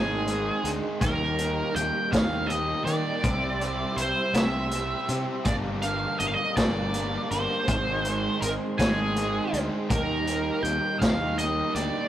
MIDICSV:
0, 0, Header, 1, 6, 480
1, 0, Start_track
1, 0, Tempo, 741015
1, 654, Time_signature, 6, 3, 24, 8
1, 7827, End_track
2, 0, Start_track
2, 0, Title_t, "Tonewheel organ"
2, 0, Program_c, 0, 16
2, 0, Note_on_c, 0, 63, 53
2, 0, Note_on_c, 0, 68, 55
2, 0, Note_on_c, 0, 84, 53
2, 639, Note_off_c, 0, 68, 0
2, 640, Note_off_c, 0, 84, 0
2, 656, Note_on_c, 0, 82, 52
2, 658, Note_on_c, 0, 67, 56
2, 2069, Note_off_c, 0, 63, 0
2, 2080, Note_off_c, 0, 82, 0
2, 2102, Note_on_c, 0, 76, 52
2, 2104, Note_on_c, 0, 84, 54
2, 2104, Note_on_c, 0, 88, 65
2, 3522, Note_off_c, 0, 76, 0
2, 3523, Note_off_c, 0, 84, 0
2, 3523, Note_off_c, 0, 88, 0
2, 3535, Note_on_c, 0, 77, 50
2, 3537, Note_on_c, 0, 82, 54
2, 3538, Note_on_c, 0, 86, 62
2, 4948, Note_off_c, 0, 67, 0
2, 4959, Note_off_c, 0, 77, 0
2, 4960, Note_off_c, 0, 82, 0
2, 4960, Note_off_c, 0, 86, 0
2, 4985, Note_on_c, 0, 84, 51
2, 4987, Note_on_c, 0, 63, 51
2, 4989, Note_on_c, 0, 68, 60
2, 6403, Note_off_c, 0, 84, 0
2, 6405, Note_off_c, 0, 68, 0
2, 6413, Note_on_c, 0, 67, 59
2, 6414, Note_on_c, 0, 82, 55
2, 7827, Note_off_c, 0, 63, 0
2, 7827, Note_off_c, 0, 67, 0
2, 7827, Note_off_c, 0, 82, 0
2, 7827, End_track
3, 0, Start_track
3, 0, Title_t, "Lead electric guitar"
3, 0, Program_c, 1, 29
3, 0, Note_on_c, 1, 68, 78
3, 445, Note_off_c, 1, 68, 0
3, 654, Note_on_c, 1, 70, 80
3, 1138, Note_on_c, 1, 79, 89
3, 1148, Note_off_c, 1, 70, 0
3, 1371, Note_off_c, 1, 79, 0
3, 1374, Note_on_c, 1, 77, 90
3, 1600, Note_on_c, 1, 75, 84
3, 1621, Note_off_c, 1, 77, 0
3, 1839, Note_off_c, 1, 75, 0
3, 1842, Note_on_c, 1, 74, 88
3, 2568, Note_on_c, 1, 72, 75
3, 2589, Note_off_c, 1, 74, 0
3, 2812, Note_on_c, 1, 76, 86
3, 2818, Note_off_c, 1, 72, 0
3, 3326, Note_off_c, 1, 76, 0
3, 3529, Note_on_c, 1, 74, 84
3, 3594, Note_off_c, 1, 74, 0
3, 3769, Note_on_c, 1, 77, 79
3, 4006, Note_off_c, 1, 77, 0
3, 4009, Note_on_c, 1, 75, 78
3, 4053, Note_off_c, 1, 75, 0
3, 4067, Note_on_c, 1, 77, 67
3, 4108, Note_off_c, 1, 77, 0
3, 4111, Note_on_c, 1, 75, 83
3, 4246, Note_off_c, 1, 75, 0
3, 4255, Note_on_c, 1, 74, 77
3, 4735, Note_on_c, 1, 72, 82
3, 4748, Note_off_c, 1, 74, 0
3, 5443, Note_off_c, 1, 72, 0
3, 5446, Note_on_c, 1, 70, 74
3, 5511, Note_off_c, 1, 70, 0
3, 5687, Note_on_c, 1, 68, 76
3, 6203, Note_off_c, 1, 68, 0
3, 6411, Note_on_c, 1, 70, 82
3, 6884, Note_on_c, 1, 79, 82
3, 6905, Note_off_c, 1, 70, 0
3, 7118, Note_off_c, 1, 79, 0
3, 7121, Note_on_c, 1, 77, 82
3, 7371, Note_on_c, 1, 75, 78
3, 7373, Note_off_c, 1, 77, 0
3, 7608, Note_off_c, 1, 75, 0
3, 7610, Note_on_c, 1, 74, 81
3, 7827, Note_off_c, 1, 74, 0
3, 7827, End_track
4, 0, Start_track
4, 0, Title_t, "Overdriven electric guitar"
4, 0, Program_c, 2, 29
4, 0, Note_on_c, 2, 44, 60
4, 0, Note_on_c, 2, 51, 67
4, 0, Note_on_c, 2, 56, 62
4, 0, Note_on_c, 2, 60, 64
4, 0, Note_on_c, 2, 63, 74
4, 0, Note_on_c, 2, 68, 74
4, 169, Note_off_c, 2, 56, 0
4, 172, Note_off_c, 2, 60, 0
4, 177, Note_off_c, 2, 63, 0
4, 177, Note_on_c, 2, 56, 67
4, 179, Note_on_c, 2, 60, 61
4, 180, Note_off_c, 2, 68, 0
4, 185, Note_on_c, 2, 63, 66
4, 188, Note_on_c, 2, 68, 68
4, 410, Note_off_c, 2, 68, 0
4, 413, Note_off_c, 2, 63, 0
4, 417, Note_off_c, 2, 51, 0
4, 418, Note_on_c, 2, 68, 68
4, 419, Note_off_c, 2, 44, 0
4, 419, Note_off_c, 2, 60, 0
4, 421, Note_off_c, 2, 56, 0
4, 421, Note_on_c, 2, 63, 55
4, 426, Note_on_c, 2, 60, 53
4, 429, Note_on_c, 2, 56, 57
4, 641, Note_off_c, 2, 68, 0
4, 643, Note_off_c, 2, 63, 0
4, 646, Note_off_c, 2, 60, 0
4, 647, Note_off_c, 2, 56, 0
4, 654, Note_on_c, 2, 51, 76
4, 658, Note_on_c, 2, 55, 81
4, 660, Note_on_c, 2, 58, 74
4, 661, Note_on_c, 2, 63, 84
4, 666, Note_on_c, 2, 67, 85
4, 893, Note_off_c, 2, 67, 0
4, 894, Note_off_c, 2, 63, 0
4, 895, Note_on_c, 2, 67, 59
4, 902, Note_off_c, 2, 58, 0
4, 902, Note_on_c, 2, 63, 60
4, 910, Note_on_c, 2, 58, 55
4, 1134, Note_off_c, 2, 51, 0
4, 1370, Note_off_c, 2, 63, 0
4, 1372, Note_off_c, 2, 67, 0
4, 1373, Note_off_c, 2, 58, 0
4, 1374, Note_on_c, 2, 67, 75
4, 1378, Note_on_c, 2, 63, 74
4, 1381, Note_on_c, 2, 58, 67
4, 1382, Note_off_c, 2, 55, 0
4, 1384, Note_on_c, 2, 55, 63
4, 1386, Note_on_c, 2, 51, 65
4, 1607, Note_off_c, 2, 58, 0
4, 1608, Note_off_c, 2, 55, 0
4, 1611, Note_on_c, 2, 55, 70
4, 1612, Note_off_c, 2, 63, 0
4, 1615, Note_on_c, 2, 58, 57
4, 1619, Note_on_c, 2, 63, 68
4, 1623, Note_off_c, 2, 67, 0
4, 1626, Note_on_c, 2, 67, 65
4, 1850, Note_off_c, 2, 67, 0
4, 1851, Note_off_c, 2, 63, 0
4, 1853, Note_on_c, 2, 67, 62
4, 1858, Note_off_c, 2, 58, 0
4, 1858, Note_on_c, 2, 63, 62
4, 1860, Note_off_c, 2, 51, 0
4, 1865, Note_on_c, 2, 58, 58
4, 2082, Note_off_c, 2, 63, 0
4, 2085, Note_off_c, 2, 58, 0
4, 2088, Note_on_c, 2, 48, 76
4, 2091, Note_off_c, 2, 55, 0
4, 2093, Note_on_c, 2, 55, 72
4, 2097, Note_on_c, 2, 60, 76
4, 2099, Note_off_c, 2, 67, 0
4, 2099, Note_on_c, 2, 64, 83
4, 2101, Note_on_c, 2, 67, 85
4, 2332, Note_off_c, 2, 67, 0
4, 2334, Note_off_c, 2, 64, 0
4, 2335, Note_on_c, 2, 67, 62
4, 2339, Note_off_c, 2, 60, 0
4, 2342, Note_on_c, 2, 64, 60
4, 2347, Note_on_c, 2, 60, 49
4, 2571, Note_off_c, 2, 48, 0
4, 2808, Note_off_c, 2, 67, 0
4, 2813, Note_off_c, 2, 64, 0
4, 2815, Note_on_c, 2, 67, 80
4, 2816, Note_off_c, 2, 60, 0
4, 2821, Note_on_c, 2, 64, 64
4, 2822, Note_off_c, 2, 55, 0
4, 2824, Note_on_c, 2, 60, 64
4, 2825, Note_on_c, 2, 55, 61
4, 2829, Note_on_c, 2, 48, 62
4, 3051, Note_off_c, 2, 55, 0
4, 3058, Note_off_c, 2, 60, 0
4, 3059, Note_on_c, 2, 55, 56
4, 3060, Note_off_c, 2, 64, 0
4, 3063, Note_off_c, 2, 67, 0
4, 3066, Note_on_c, 2, 60, 63
4, 3068, Note_on_c, 2, 64, 61
4, 3070, Note_on_c, 2, 67, 65
4, 3294, Note_off_c, 2, 67, 0
4, 3301, Note_off_c, 2, 48, 0
4, 3301, Note_off_c, 2, 64, 0
4, 3302, Note_on_c, 2, 67, 65
4, 3305, Note_off_c, 2, 60, 0
4, 3309, Note_on_c, 2, 64, 56
4, 3313, Note_on_c, 2, 60, 49
4, 3521, Note_off_c, 2, 55, 0
4, 3523, Note_off_c, 2, 67, 0
4, 3526, Note_off_c, 2, 64, 0
4, 3528, Note_off_c, 2, 60, 0
4, 3534, Note_on_c, 2, 43, 77
4, 3537, Note_on_c, 2, 50, 72
4, 3542, Note_on_c, 2, 55, 82
4, 3544, Note_on_c, 2, 62, 70
4, 3545, Note_on_c, 2, 58, 82
4, 3548, Note_on_c, 2, 70, 83
4, 3769, Note_off_c, 2, 70, 0
4, 3772, Note_off_c, 2, 62, 0
4, 3776, Note_on_c, 2, 70, 61
4, 3778, Note_off_c, 2, 58, 0
4, 3780, Note_on_c, 2, 62, 60
4, 3781, Note_off_c, 2, 55, 0
4, 3786, Note_on_c, 2, 58, 53
4, 3789, Note_on_c, 2, 55, 47
4, 4013, Note_off_c, 2, 43, 0
4, 4015, Note_off_c, 2, 50, 0
4, 4248, Note_off_c, 2, 70, 0
4, 4251, Note_off_c, 2, 62, 0
4, 4254, Note_off_c, 2, 58, 0
4, 4256, Note_off_c, 2, 55, 0
4, 4256, Note_on_c, 2, 70, 77
4, 4259, Note_on_c, 2, 62, 71
4, 4262, Note_on_c, 2, 58, 69
4, 4264, Note_on_c, 2, 55, 61
4, 4267, Note_on_c, 2, 50, 61
4, 4269, Note_on_c, 2, 43, 60
4, 4484, Note_off_c, 2, 55, 0
4, 4488, Note_off_c, 2, 58, 0
4, 4492, Note_on_c, 2, 55, 58
4, 4493, Note_off_c, 2, 62, 0
4, 4496, Note_on_c, 2, 58, 61
4, 4497, Note_off_c, 2, 70, 0
4, 4501, Note_on_c, 2, 62, 65
4, 4505, Note_on_c, 2, 70, 73
4, 4723, Note_off_c, 2, 70, 0
4, 4727, Note_off_c, 2, 62, 0
4, 4731, Note_on_c, 2, 70, 67
4, 4733, Note_off_c, 2, 58, 0
4, 4735, Note_on_c, 2, 62, 61
4, 4736, Note_off_c, 2, 55, 0
4, 4739, Note_off_c, 2, 50, 0
4, 4740, Note_off_c, 2, 43, 0
4, 4741, Note_on_c, 2, 58, 55
4, 4744, Note_on_c, 2, 55, 51
4, 4957, Note_off_c, 2, 70, 0
4, 4959, Note_off_c, 2, 62, 0
4, 4962, Note_off_c, 2, 58, 0
4, 4964, Note_off_c, 2, 55, 0
4, 4972, Note_on_c, 2, 44, 72
4, 4976, Note_on_c, 2, 51, 77
4, 4978, Note_on_c, 2, 56, 82
4, 4981, Note_on_c, 2, 60, 74
4, 4981, Note_on_c, 2, 63, 87
4, 4985, Note_on_c, 2, 68, 87
4, 5206, Note_off_c, 2, 68, 0
4, 5212, Note_off_c, 2, 60, 0
4, 5213, Note_off_c, 2, 63, 0
4, 5213, Note_on_c, 2, 68, 66
4, 5215, Note_on_c, 2, 63, 64
4, 5218, Note_off_c, 2, 56, 0
4, 5219, Note_on_c, 2, 60, 54
4, 5226, Note_on_c, 2, 56, 49
4, 5452, Note_off_c, 2, 44, 0
4, 5454, Note_off_c, 2, 51, 0
4, 5686, Note_off_c, 2, 68, 0
4, 5690, Note_off_c, 2, 63, 0
4, 5693, Note_off_c, 2, 60, 0
4, 5694, Note_off_c, 2, 56, 0
4, 5694, Note_on_c, 2, 68, 76
4, 5697, Note_on_c, 2, 63, 71
4, 5701, Note_on_c, 2, 60, 71
4, 5702, Note_on_c, 2, 51, 66
4, 5702, Note_on_c, 2, 56, 74
4, 5705, Note_on_c, 2, 44, 64
4, 5927, Note_off_c, 2, 56, 0
4, 5932, Note_off_c, 2, 60, 0
4, 5935, Note_off_c, 2, 63, 0
4, 5935, Note_on_c, 2, 56, 62
4, 5940, Note_on_c, 2, 60, 65
4, 5941, Note_off_c, 2, 68, 0
4, 5943, Note_on_c, 2, 63, 63
4, 5949, Note_on_c, 2, 68, 65
4, 6167, Note_off_c, 2, 68, 0
4, 6169, Note_off_c, 2, 63, 0
4, 6174, Note_off_c, 2, 60, 0
4, 6174, Note_on_c, 2, 68, 72
4, 6176, Note_off_c, 2, 51, 0
4, 6177, Note_off_c, 2, 56, 0
4, 6177, Note_on_c, 2, 63, 60
4, 6178, Note_off_c, 2, 44, 0
4, 6182, Note_on_c, 2, 60, 56
4, 6184, Note_on_c, 2, 56, 59
4, 6398, Note_off_c, 2, 68, 0
4, 6399, Note_off_c, 2, 63, 0
4, 6402, Note_off_c, 2, 60, 0
4, 6403, Note_off_c, 2, 56, 0
4, 6415, Note_on_c, 2, 51, 78
4, 6417, Note_on_c, 2, 55, 77
4, 6421, Note_on_c, 2, 58, 79
4, 6427, Note_on_c, 2, 63, 84
4, 6428, Note_on_c, 2, 67, 84
4, 6654, Note_off_c, 2, 67, 0
4, 6657, Note_on_c, 2, 67, 64
4, 6658, Note_off_c, 2, 63, 0
4, 6661, Note_off_c, 2, 58, 0
4, 6666, Note_on_c, 2, 63, 53
4, 6669, Note_on_c, 2, 58, 59
4, 6892, Note_off_c, 2, 51, 0
4, 7131, Note_off_c, 2, 63, 0
4, 7131, Note_off_c, 2, 67, 0
4, 7134, Note_off_c, 2, 58, 0
4, 7134, Note_on_c, 2, 67, 75
4, 7139, Note_on_c, 2, 63, 77
4, 7141, Note_off_c, 2, 55, 0
4, 7142, Note_on_c, 2, 58, 78
4, 7144, Note_on_c, 2, 55, 67
4, 7148, Note_on_c, 2, 51, 61
4, 7368, Note_off_c, 2, 55, 0
4, 7369, Note_off_c, 2, 58, 0
4, 7371, Note_on_c, 2, 55, 64
4, 7373, Note_off_c, 2, 63, 0
4, 7377, Note_on_c, 2, 58, 72
4, 7380, Note_on_c, 2, 63, 69
4, 7384, Note_off_c, 2, 67, 0
4, 7387, Note_on_c, 2, 67, 64
4, 7610, Note_off_c, 2, 67, 0
4, 7612, Note_off_c, 2, 63, 0
4, 7613, Note_on_c, 2, 67, 63
4, 7616, Note_off_c, 2, 58, 0
4, 7619, Note_off_c, 2, 51, 0
4, 7620, Note_on_c, 2, 63, 57
4, 7624, Note_on_c, 2, 58, 61
4, 7827, Note_off_c, 2, 55, 0
4, 7827, Note_off_c, 2, 58, 0
4, 7827, Note_off_c, 2, 63, 0
4, 7827, Note_off_c, 2, 67, 0
4, 7827, End_track
5, 0, Start_track
5, 0, Title_t, "Fingered electric bass"
5, 0, Program_c, 3, 33
5, 0, Note_on_c, 3, 32, 88
5, 320, Note_off_c, 3, 32, 0
5, 415, Note_on_c, 3, 38, 81
5, 511, Note_off_c, 3, 38, 0
5, 658, Note_on_c, 3, 39, 81
5, 1042, Note_off_c, 3, 39, 0
5, 1135, Note_on_c, 3, 39, 82
5, 1231, Note_off_c, 3, 39, 0
5, 1379, Note_on_c, 3, 39, 87
5, 1762, Note_off_c, 3, 39, 0
5, 1854, Note_on_c, 3, 51, 82
5, 1950, Note_off_c, 3, 51, 0
5, 2097, Note_on_c, 3, 36, 83
5, 2481, Note_off_c, 3, 36, 0
5, 2568, Note_on_c, 3, 36, 80
5, 2667, Note_off_c, 3, 36, 0
5, 2808, Note_on_c, 3, 36, 85
5, 3195, Note_off_c, 3, 36, 0
5, 3295, Note_on_c, 3, 48, 82
5, 3390, Note_off_c, 3, 48, 0
5, 3533, Note_on_c, 3, 31, 82
5, 3918, Note_off_c, 3, 31, 0
5, 4018, Note_on_c, 3, 31, 81
5, 4112, Note_off_c, 3, 31, 0
5, 4254, Note_on_c, 3, 31, 88
5, 4638, Note_off_c, 3, 31, 0
5, 4735, Note_on_c, 3, 31, 77
5, 4830, Note_off_c, 3, 31, 0
5, 4974, Note_on_c, 3, 32, 82
5, 5359, Note_off_c, 3, 32, 0
5, 5451, Note_on_c, 3, 32, 87
5, 5548, Note_off_c, 3, 32, 0
5, 5694, Note_on_c, 3, 32, 92
5, 6078, Note_off_c, 3, 32, 0
5, 6173, Note_on_c, 3, 38, 84
5, 6269, Note_off_c, 3, 38, 0
5, 6416, Note_on_c, 3, 39, 84
5, 6799, Note_off_c, 3, 39, 0
5, 6886, Note_on_c, 3, 39, 87
5, 6984, Note_off_c, 3, 39, 0
5, 7137, Note_on_c, 3, 39, 90
5, 7520, Note_off_c, 3, 39, 0
5, 7609, Note_on_c, 3, 38, 81
5, 7706, Note_off_c, 3, 38, 0
5, 7827, End_track
6, 0, Start_track
6, 0, Title_t, "Drums"
6, 178, Note_on_c, 9, 42, 62
6, 243, Note_off_c, 9, 42, 0
6, 420, Note_on_c, 9, 42, 54
6, 484, Note_off_c, 9, 42, 0
6, 656, Note_on_c, 9, 36, 98
6, 657, Note_on_c, 9, 42, 74
6, 721, Note_off_c, 9, 36, 0
6, 721, Note_off_c, 9, 42, 0
6, 897, Note_on_c, 9, 42, 52
6, 962, Note_off_c, 9, 42, 0
6, 1139, Note_on_c, 9, 42, 54
6, 1204, Note_off_c, 9, 42, 0
6, 1378, Note_on_c, 9, 36, 70
6, 1381, Note_on_c, 9, 42, 67
6, 1389, Note_on_c, 9, 38, 100
6, 1443, Note_off_c, 9, 36, 0
6, 1446, Note_off_c, 9, 42, 0
6, 1453, Note_off_c, 9, 38, 0
6, 1618, Note_on_c, 9, 42, 55
6, 1683, Note_off_c, 9, 42, 0
6, 1857, Note_on_c, 9, 42, 51
6, 1922, Note_off_c, 9, 42, 0
6, 2096, Note_on_c, 9, 42, 70
6, 2097, Note_on_c, 9, 36, 96
6, 2161, Note_off_c, 9, 42, 0
6, 2162, Note_off_c, 9, 36, 0
6, 2340, Note_on_c, 9, 42, 51
6, 2404, Note_off_c, 9, 42, 0
6, 2575, Note_on_c, 9, 42, 55
6, 2639, Note_off_c, 9, 42, 0
6, 2813, Note_on_c, 9, 42, 73
6, 2821, Note_on_c, 9, 38, 100
6, 2878, Note_off_c, 9, 42, 0
6, 2886, Note_off_c, 9, 38, 0
6, 3053, Note_on_c, 9, 42, 59
6, 3118, Note_off_c, 9, 42, 0
6, 3294, Note_on_c, 9, 42, 56
6, 3359, Note_off_c, 9, 42, 0
6, 3530, Note_on_c, 9, 42, 78
6, 3534, Note_on_c, 9, 36, 96
6, 3595, Note_off_c, 9, 42, 0
6, 3599, Note_off_c, 9, 36, 0
6, 3772, Note_on_c, 9, 42, 53
6, 3836, Note_off_c, 9, 42, 0
6, 4014, Note_on_c, 9, 42, 56
6, 4079, Note_off_c, 9, 42, 0
6, 4254, Note_on_c, 9, 42, 77
6, 4255, Note_on_c, 9, 36, 70
6, 4261, Note_on_c, 9, 38, 101
6, 4318, Note_off_c, 9, 42, 0
6, 4319, Note_off_c, 9, 36, 0
6, 4326, Note_off_c, 9, 38, 0
6, 4494, Note_on_c, 9, 42, 59
6, 4559, Note_off_c, 9, 42, 0
6, 4736, Note_on_c, 9, 42, 53
6, 4801, Note_off_c, 9, 42, 0
6, 4973, Note_on_c, 9, 42, 78
6, 4975, Note_on_c, 9, 36, 99
6, 5038, Note_off_c, 9, 42, 0
6, 5040, Note_off_c, 9, 36, 0
6, 5212, Note_on_c, 9, 42, 50
6, 5277, Note_off_c, 9, 42, 0
6, 5455, Note_on_c, 9, 42, 54
6, 5519, Note_off_c, 9, 42, 0
6, 5694, Note_on_c, 9, 36, 73
6, 5696, Note_on_c, 9, 42, 68
6, 5704, Note_on_c, 9, 38, 101
6, 5759, Note_off_c, 9, 36, 0
6, 5761, Note_off_c, 9, 42, 0
6, 5769, Note_off_c, 9, 38, 0
6, 5935, Note_on_c, 9, 42, 55
6, 6000, Note_off_c, 9, 42, 0
6, 6177, Note_on_c, 9, 42, 48
6, 6241, Note_off_c, 9, 42, 0
6, 6414, Note_on_c, 9, 42, 74
6, 6415, Note_on_c, 9, 36, 98
6, 6479, Note_off_c, 9, 36, 0
6, 6479, Note_off_c, 9, 42, 0
6, 6654, Note_on_c, 9, 42, 52
6, 6719, Note_off_c, 9, 42, 0
6, 6896, Note_on_c, 9, 42, 56
6, 6961, Note_off_c, 9, 42, 0
6, 7136, Note_on_c, 9, 36, 72
6, 7136, Note_on_c, 9, 42, 80
6, 7144, Note_on_c, 9, 38, 100
6, 7200, Note_off_c, 9, 36, 0
6, 7201, Note_off_c, 9, 42, 0
6, 7208, Note_off_c, 9, 38, 0
6, 7374, Note_on_c, 9, 42, 57
6, 7439, Note_off_c, 9, 42, 0
6, 7614, Note_on_c, 9, 42, 55
6, 7678, Note_off_c, 9, 42, 0
6, 7827, End_track
0, 0, End_of_file